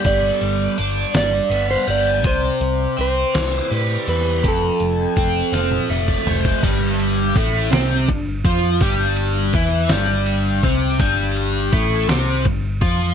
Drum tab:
CC |------------|------------|------------|x-----------|
RD |------------|------------|------------|x-x-x-x-x-x-|
HH |x-x-x-x-x-x-|x-x-x-x-x-x-|x-x-x-x-x-x-|------------|
SD |------o-----|------o-----|------o-----|------o-----|
T1 |------------|------------|-------o----|------------|
FT |------------|------------|----------o-|------------|
BD |o-----------|o-----------|o---o----o-o|o---o---o-o-|

CC |------------|------------|
RD |x-x-x-x-x-x-|x-x-x-x-x-x-|
HH |------------|------------|
SD |------o-----|------o-----|
T1 |------------|------------|
FT |------------|------------|
BD |o---o-----o-|o---o---o-o-|